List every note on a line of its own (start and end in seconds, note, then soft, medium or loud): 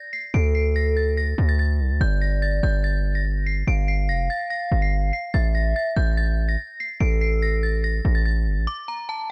0.00 0.11 A#6 medium
0.13 0.30 C7 medium
0.34 1.34 D2 loud
0.34 1.55 A4 loud
0.34 0.51 D7 medium
0.55 0.72 C7 medium
0.76 0.93 A#6 medium
0.97 1.13 A6 medium
1.17 1.47 A#6 medium
1.38 1.81 D2 loud
1.49 1.57 A6 medium
1.59 1.98 A6 medium
1.80 1.92 C2 loud
1.90 2.00 D2 loud
2.01 2.61 G1 loud
2.01 3.22 D5 loud
2.01 2.18 G6 medium
2.21 2.38 A#6 medium
2.42 2.59 A6 medium
2.63 3.63 G1 loud
2.63 2.80 G6 medium
2.84 3.13 A6 medium
3.15 3.45 A#6 medium
3.46 3.63 C7 medium
3.67 4.10 G1 loud
3.67 5.30 F5 loud
3.67 3.84 D7 medium
3.88 4.05 C7 medium
4.09 4.29 F1 loud
4.09 4.26 A#6 medium
4.30 4.47 A6 medium
4.50 4.80 A#6 loud
4.72 5.12 G1 loud
4.82 5.11 C7 medium
5.13 5.30 C7 medium
5.34 5.74 A1 loud
5.34 6.55 E5 loud
5.34 5.51 A6 medium
5.55 5.72 A#6 medium
5.76 5.93 A6 medium
5.96 6.56 A1 loud
5.96 6.13 G6 medium
6.17 6.47 A6 medium
6.49 6.78 A#6 medium
6.80 6.97 C7 medium
7.00 8.01 A1 loud
7.00 8.22 A4 loud
7.00 7.17 D7 medium
7.21 7.38 C7 medium
7.42 7.59 A#6 medium
7.63 7.80 A6 medium
7.84 8.13 A#6 medium
8.05 8.48 A1 loud
8.15 8.23 A6 medium
8.26 8.65 A6 medium
8.46 8.58 G1 loud
8.57 8.67 A1 loud
8.67 8.84 D6 medium
8.88 9.05 A#5 medium
9.09 9.26 A5 medium